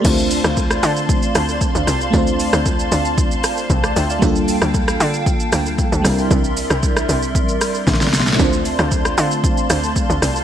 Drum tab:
CC |x-------------------------------|--------------------------------|--------------------------------|--------------------------------|
HH |----o-------o-------o-------o---|----o-------o-------o-------o---|----o-------o-------o-------o---|----o-------o-------o-------o---|
SH |x-x-x-x-x-x-x-x-x-x-x-x-x-x-x-x-|x-x-x-x-x-x-x-x-x-x-x-x-x-x-x-x-|x-x-x-x-x-x-x-x-x-x-x-x-x-x-x-x-|x-x-x-x-x-x-x-x-x-x-x-x-x-x-x-x-|
SD |------r---r---------r-------r---|------r-------------r-----r-----|------r---r---------r-------r---|------r---r---------r---oooooooo|
BD |o-------o-------o-------o-------|o-------o-------o-------o-------|o-------o-------o-------o-------|o-------o-------o-------o-------|

CC |--------------------------------|
HH |----o-------o-------o-------o---|
SH |x-x-x-x-x-x-x-x-x-x-x-x-x-x-x-x-|
SD |------r---r---------r-------r---|
BD |o-------o-------o-------o-------|